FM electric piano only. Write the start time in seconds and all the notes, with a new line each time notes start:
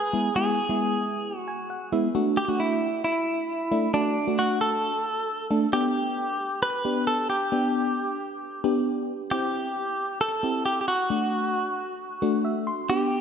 0.13 G#3 B3 E4
0.36 G#3 B3 E4
0.69 G#3 B3 E4
1.48 G#5
1.70 F#5
1.92 G#3 B3 E4 E5
2.15 A3 D4 F#4
2.48 A3 D4 F#4
3.72 A3 D4 E4
3.94 A3 D4 F#4
4.27 A3 D4 F#4
5.51 A3 D4 A4
5.73 B3 D4 G4
6.85 B3 D4 G4
7.52 B3 D4 G4
8.64 B3 D4 G4
9.31 C4 E4 G4
10.43 C4 E4 G4
11.10 A3 D4 F#4
12.22 A3 D4 F#4
12.45 E5
12.67 C6
12.89 B3 D4 G4